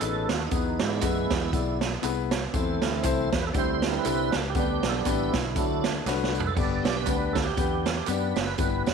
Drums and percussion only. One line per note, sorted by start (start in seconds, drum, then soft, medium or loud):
0.01 clap medium
0.01 closed hi-hat medium
0.01 tambourine medium
0.29 snare loud
0.29 closed hi-hat medium
0.29 tambourine medium
0.51 kick loud
0.51 closed hi-hat medium
0.51 tambourine medium
0.79 snare loud
0.79 closed hi-hat medium
0.79 tambourine medium
1.01 kick medium
1.01 clap medium
1.01 closed hi-hat loud
1.01 tambourine loud
1.31 kick loud
1.31 snare loud
1.31 closed hi-hat medium
1.31 tambourine soft
1.53 kick loud
1.53 closed hi-hat medium
1.53 tambourine medium
1.81 snare loud
1.81 closed hi-hat medium
1.81 tambourine soft
2.04 clap medium
2.04 closed hi-hat medium
2.04 tambourine medium
2.31 snare loud
2.31 closed hi-hat medium
2.31 tambourine medium
2.54 kick loud
2.54 closed hi-hat medium
2.54 tambourine medium
2.82 snare loud
2.82 closed hi-hat medium
2.82 tambourine medium
3.03 kick medium
3.03 clap medium
3.03 closed hi-hat loud
3.03 tambourine loud
3.33 kick medium
3.33 snare loud
3.33 closed hi-hat medium
3.33 tambourine medium
3.54 kick loud
3.54 closed hi-hat medium
3.54 tambourine medium
3.82 snare loud
3.82 closed hi-hat medium
3.82 tambourine medium
4.05 clap medium
4.05 closed hi-hat medium
4.05 tambourine medium
4.32 snare loud
4.32 closed hi-hat medium
4.32 tambourine medium
4.55 kick loud
4.55 closed hi-hat medium
4.55 tambourine medium
4.83 snare loud
4.83 closed hi-hat medium
4.83 tambourine medium
5.05 kick medium
5.05 clap loud
5.05 closed hi-hat medium
5.05 tambourine loud
5.34 kick medium
5.34 snare loud
5.34 closed hi-hat medium
5.34 tambourine medium
5.56 kick loud
5.56 closed hi-hat medium
5.56 tambourine medium
5.84 snare loud
5.84 closed hi-hat medium
5.84 tambourine medium
6.07 snare soft
6.07 clap medium
6.07 tambourine medium
6.24 snare medium
6.35 tambourine medium
6.40 floor tom loud
6.57 kick loud
6.57 tambourine medium
6.57 splash medium
6.85 snare loud
6.85 closed hi-hat medium
6.85 tambourine medium
7.07 kick loud
7.07 clap medium
7.07 closed hi-hat loud
7.07 tambourine medium
7.35 kick loud
7.35 snare loud
7.35 closed hi-hat medium
7.35 tambourine medium
7.57 kick loud
7.57 closed hi-hat medium
7.57 tambourine medium
7.86 snare loud
7.86 closed hi-hat medium
7.86 tambourine medium
8.07 clap medium
8.07 closed hi-hat medium
8.07 tambourine medium
8.36 snare loud
8.36 closed hi-hat medium
8.36 tambourine medium
8.58 kick loud
8.58 closed hi-hat medium
8.58 tambourine medium
8.86 snare loud
8.86 closed hi-hat medium
8.86 tambourine medium